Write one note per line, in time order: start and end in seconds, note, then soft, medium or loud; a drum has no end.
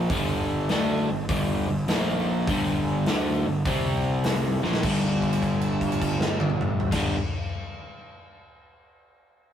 0.10 0.65 G1 loud
0.10 0.69 G2 loud
0.10 0.68 D3 loud
0.10 0.69 G3 loud
0.10 kick loud
0.10 open hi-hat medium
0.69 1.06 D2 medium
0.69 1.07 D3 medium
0.69 1.07 A3 loud
0.69 1.08 D4 medium
0.69 snare loud
0.69 open hi-hat medium
1.09 1.28 G1 medium
1.09 1.25 G2 medium
1.09 1.25 D3 medium
1.29 1.65 G1 medium
1.29 1.67 G2 loud
1.29 1.67 D3 loud
1.29 1.67 G3 medium
1.29 kick loud
1.29 open hi-hat medium
1.68 1.87 G1 medium
1.68 1.84 G2 medium
1.68 1.84 D3 medium
1.88 2.44 A#1 medium
1.88 2.47 A#2 medium
1.88 2.47 F3 loud
1.88 2.47 A#3 medium
1.88 snare loud
1.88 open hi-hat medium
2.47 3.03 G1 loud
2.47 3.06 G2 loud
2.47 3.06 D3 loud
2.47 3.07 G3 loud
2.47 kick loud
2.47 open hi-hat medium
3.06 3.43 D2 medium
3.06 3.45 D3 medium
3.06 3.45 A3 loud
3.06 3.45 D4 medium
3.06 snare loud
3.06 open hi-hat medium
3.46 3.65 G1 medium
3.46 3.62 G2 medium
3.46 3.62 D3 medium
3.65 4.60 C2 medium
3.65 4.63 C3 loud
3.65 4.63 G3 loud
3.65 4.63 C4 loud
3.65 kick loud
3.65 open hi-hat medium
4.24 snare loud
4.24 open hi-hat medium
4.63 4.83 A#1 loud
4.63 4.84 A#2 medium
4.63 4.84 F3 medium
4.63 4.84 A#3 loud
4.63 snare medium
4.74 snare loud
4.82 6.79 G1 loud
4.82 6.91 G2 loud
4.82 6.93 D3 loud
4.82 kick loud
4.82 crash loud
4.86 6.95 G3 loud
5.22 kick medium
5.22 crash soft
5.33 crash medium
5.42 kick medium
5.42 crash soft
5.61 crash soft
5.81 kick medium
5.81 crash soft
5.92 crash medium
6.02 kick medium
6.02 crash medium
6.21 snare loud
6.40 high tom loud
6.50 mid tom loud
6.61 mid tom loud
6.80 floor tom medium
6.91 7.13 G1 medium
6.91 7.14 G2 medium
6.91 7.16 D3 medium
6.91 kick medium
6.91 snare medium
6.91 crash medium
6.96 7.17 G3 loud